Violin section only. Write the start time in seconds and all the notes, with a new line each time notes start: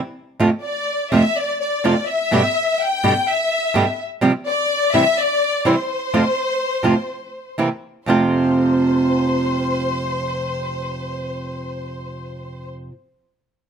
0.62 D5
1.13 E5
1.37 D5
1.62 D5
2.08 E5
2.81 G5
3.29 E5
4.47 D5
4.94 E5
5.19 D5
5.66 C5
8.07 C5